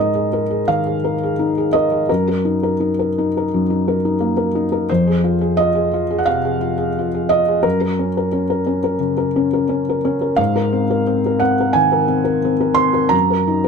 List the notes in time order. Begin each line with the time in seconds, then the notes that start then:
Already playing: G#2 G#4 A#4 C5 D#5
0.00 D#4
0.15 G#4
0.33 A#4
0.50 G#4
0.68 D#3 F5
0.86 G#4
1.04 A#4
1.23 G#4
1.39 D#4
1.58 G#4
1.73 A#4 D#5
1.92 G#4
2.09 F#2 A#4
2.29 A#4
2.45 D#4
2.63 A#4
2.80 D#4
2.99 A#4
3.18 D#4
3.37 A#4
3.54 F#2
3.70 D#4
3.88 A#4
4.05 D#4
4.20 A#3
4.37 A#4
4.55 D#4
4.72 A#4
4.89 F2 C5
5.07 G#4
5.24 F4
5.41 G#4
5.57 F4 D#5
5.75 G#4
5.94 F4
6.11 G#4
6.18 F#5
6.26 C3 F5
6.45 G#4
6.61 F4
6.78 G#4
6.99 F4
7.14 G#4
7.29 F4 D#5
7.48 G#4
7.63 F#2 A#4
7.81 A#4
7.99 C#4
8.17 A#4
8.32 C#4
8.50 A#4
8.67 C#4
8.84 A#4
8.99 C#3
9.18 A#4
9.36 C#4
9.53 A#4
9.69 C#4
9.89 A#4
10.05 C#4
10.21 A#4
10.36 G#2 F5
10.56 A#4
10.73 C4
10.91 A#4
11.07 C4
11.26 A#4
11.39 C4 F#5
11.60 A#4
11.73 D#3 G#5
11.92 A#4
12.08 C4
12.24 A#4
12.45 C4
12.61 A#4
12.74 C4 C6
12.94 A#4
13.09 F#2 A#5
13.30 A#4
13.48 D#4
13.64 A#4